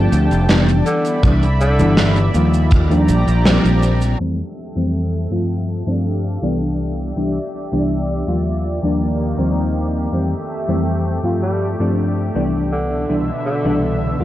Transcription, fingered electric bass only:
0.12 D2
0.31 F1
1.23 C2
1.79 G1
2.34 D#2
3.09 A#1
3.27 A#1
3.64 A#1

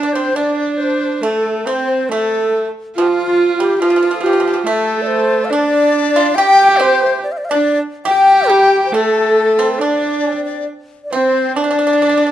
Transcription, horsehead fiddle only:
Already playing: D4
0.35 D4
1.22 A3
1.65 C4
2.09 A3
2.95 F4
3.78 F4
4.64 A3
5.50 D4
6.35 G4
7.52 D4
8.07 G4
8.92 A3
9.78 D4
11.12 C4
11.56 D4

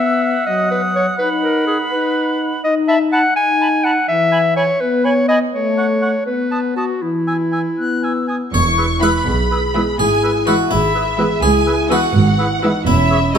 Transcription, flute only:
Already playing: E6
0.47 D#6
1.20 B5
2.88 B5
3.13 B5
3.61 B5
3.85 B5
4.32 B5
4.57 B5
5.04 B5
5.29 B5
5.78 C#6
6.02 C#6
6.52 D#6
6.78 D#6
7.27 E6
7.53 E6
7.78 F#6
8.04 E6
8.29 D#6
8.78 E6
9.03 E6
9.52 E6
9.75 E6
10.23 E6
10.47 E6
10.95 E6
11.18 E6
11.66 E6
11.90 E6
12.39 E6
12.63 E6
13.11 E6
13.35 E6

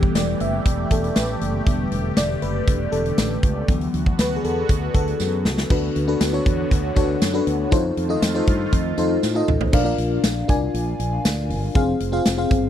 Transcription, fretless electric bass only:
0.15 E1
0.41 F#1
0.66 E1
0.91 E1
1.16 A1
1.41 F#1
1.67 E1
1.92 E1
2.17 E1
2.42 F#1
2.68 E1
2.92 E1
3.18 A1
3.43 C#2
3.69 D2
3.94 D2
4.19 D2
4.44 E2
4.69 D2
4.94 D2
5.20 F#2
5.45 C#2
5.70 D2
5.96 D2
6.21 D2
6.46 E2
6.71 D2
6.97 D2
7.22 F#2
7.47 D2
7.72 F2
7.97 F2
8.22 F2
8.48 G2
8.73 F2
8.98 F2
9.23 A2
9.49 A1
9.73 A#1
9.98 A#1
10.24 A#1
10.49 C2
10.74 A#1
10.99 A#1
11.25 D2
11.50 G1
11.76 F1
12.00 F1
12.26 F1
12.51 G1

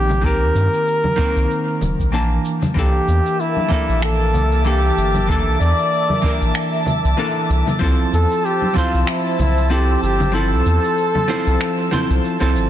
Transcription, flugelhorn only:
Already playing: G4
0.25 A#4
2.77 G4
3.40 E4
4.03 A4
4.66 G4
5.29 A4
5.61 D5
8.14 A4
8.45 G4
8.77 F4
9.02 F4
9.09 E4
9.40 E4
9.71 G4
10.03 G4
10.35 A4

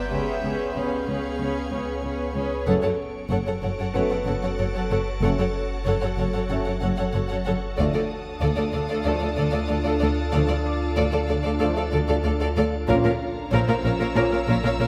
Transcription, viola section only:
Already playing: B3 G4
0.12 C#4 G#4
0.43 C#4 G#4
0.75 C#4 G#4
1.07 C#4 G#4
1.39 C#4 G#4
1.71 C#4 G#4
2.03 C#4 G#4
2.35 C#4 G#4
2.67 A4
2.83 A4
3.31 A4
3.47 A4
3.63 A4
3.79 A4
3.95 A4
4.11 A4
4.27 A4
4.43 A4
4.59 A4
4.75 A4
4.91 A4
5.22 A4
5.39 A4
5.87 A4
6.03 A4
6.19 A4
6.34 A4
6.50 A4
6.66 A4
6.82 A4
6.98 A4
7.14 A4
7.30 A4
7.47 A4
7.78 A4
7.94 A4
8.42 A4
8.58 A4
8.75 A4
8.90 A4
9.07 A4
9.22 A4
9.38 A4
9.54 A4
9.70 A4
9.85 A4
10.02 A4
10.34 A4
10.50 A4
10.97 A4
11.13 A4
11.29 A4
11.45 A4
11.61 A4
11.77 A4
11.92 A4
12.09 A4
12.25 A4
12.41 A4
12.57 A4
12.88 A#4
13.04 A#4
13.53 A#4
13.68 A#4
13.84 A#4
14.00 A#4
14.16 A#4
14.32 A#4
14.48 A#4
14.63 A#4
14.79 A#4

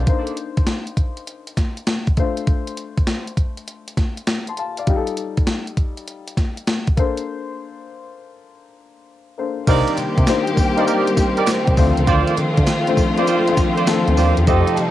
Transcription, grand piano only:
0.07 A#3 D4 D#4 C5
2.17 A3 D4 F4 C5
4.49 A5 C6
4.59 F5 A5
4.78 D5 F5
4.87 G3 D#4 F4 G4
4.96 A4
6.97 A#3 D4 A4 C5
9.38 A#3 D4 A4 C5
9.67 A#3 D4 D#4 G4 C5
10.28 A#3 D4 D#4 G4 C5
10.77 A#3 D4 D#4 G4 C5
11.78 A3 C4 D4 F4 C5
12.87 A3 C4 D4 F4 C5
13.18 A3 C4 D4 F4 C5
13.47 A3 C4 D4 F4 C5
13.88 A3 C4 D4 F4 A4
14.08 A3 C4 D4 F4 C5
14.48 A3 D#4 F4 G4 C5

